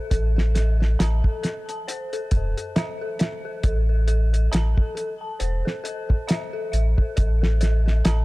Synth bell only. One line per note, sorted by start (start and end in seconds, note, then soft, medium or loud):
0.00 0.10 A4 loud
0.00 1.88 C5 medium
0.00 2.76 E5 medium
0.00 0.99 A5 medium
0.10 0.25 A4 medium
0.36 0.53 A4 medium
0.55 0.79 A4 loud
0.80 0.97 A4 medium
0.99 1.23 A5 medium
1.24 1.41 A4 medium
1.43 1.67 A4 medium
1.69 1.86 A5 medium
1.88 2.02 C5 medium
2.13 2.30 A4 medium
2.31 2.56 A4 loud
2.57 2.74 A4 medium
2.76 3.00 E5 medium
3.01 3.12 A4 medium
3.20 3.44 E5 medium
3.45 3.62 A4 medium
3.64 3.78 A4 medium
3.89 4.06 A4 medium
4.08 4.32 A4 medium
4.33 4.50 A4 medium
4.52 4.76 A5 medium
4.77 4.94 A4 medium
4.95 5.20 A4 medium
5.21 5.38 A5 medium
5.39 5.55 C5 medium
5.65 5.82 A4 medium
5.84 6.08 A4 loud
6.09 6.26 A4 medium
6.27 6.52 E5 medium
6.53 6.64 A4 medium
6.72 6.97 E5 medium
6.98 7.15 A4 medium
7.16 7.31 A4 medium
7.42 7.59 A4 medium
7.61 7.85 A4 medium
7.86 8.03 A4 medium
8.04 8.25 A5 medium